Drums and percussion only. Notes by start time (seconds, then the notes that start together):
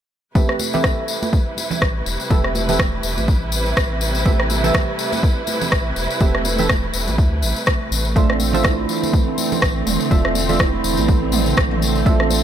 0.35 kick, tambourine, high conga, low conga
0.49 cross-stick
0.59 tambourine, high conga
0.73 tambourine, low conga
0.84 kick, cross-stick, tambourine, high conga, low conga
1.08 tambourine
1.23 tambourine, high conga
1.33 kick, tambourine
1.57 tambourine, high conga
1.71 tambourine, low conga
1.82 kick, cross-stick
2.06 tambourine
2.20 tambourine
2.30 kick, tambourine, high conga, low conga
2.44 cross-stick
2.55 tambourine, high conga
2.69 tambourine, low conga
2.79 kick, cross-stick, high conga, low conga
3.03 tambourine
3.18 tambourine, high conga
3.28 kick, tambourine
3.52 tambourine
3.66 tambourine
3.77 kick, cross-stick, tambourine
4.01 tambourine
4.15 tambourine
4.25 kick, tambourine, high conga, low conga
4.40 cross-stick
4.50 tambourine, high conga
4.64 tambourine, low conga
4.74 kick, cross-stick, high conga, low conga
4.99 tambourine
5.12 tambourine, high conga
5.23 kick, tambourine
5.47 tambourine, high conga
5.61 tambourine, low conga
5.72 kick, cross-stick
5.96 tambourine
6.10 tambourine
6.20 kick, tambourine, high conga, low conga
6.35 cross-stick
6.45 tambourine, high conga
6.58 tambourine, low conga
6.69 kick, cross-stick, high conga, low conga
6.93 tambourine
7.08 tambourine, high conga
7.18 kick, tambourine
7.42 tambourine
7.56 tambourine
7.66 kick, cross-stick, tambourine
7.92 tambourine
8.05 tambourine
8.16 kick, tambourine, high conga, low conga
8.30 cross-stick
8.40 tambourine, high conga
8.53 tambourine, low conga
8.64 kick, cross-stick, high conga, low conga
8.89 tambourine
9.03 tambourine, high conga
9.13 kick, tambourine
9.38 tambourine, high conga
9.52 tambourine, low conga
9.62 kick, cross-stick, tambourine
9.87 mid tom, tambourine
10.01 tambourine
10.11 kick, tambourine, high conga, low conga
10.25 cross-stick
10.35 tambourine, high conga
10.49 tambourine, low conga
10.59 kick, cross-stick, tambourine, high conga, low conga
10.84 tambourine
10.97 tambourine, high conga
11.08 kick, tambourine
11.32 mid tom, tambourine
11.46 tambourine
11.57 kick, cross-stick
11.71 mid tom
11.82 tambourine
11.95 tambourine
12.06 kick, tambourine, high conga, low conga
12.20 cross-stick
12.30 tambourine, high conga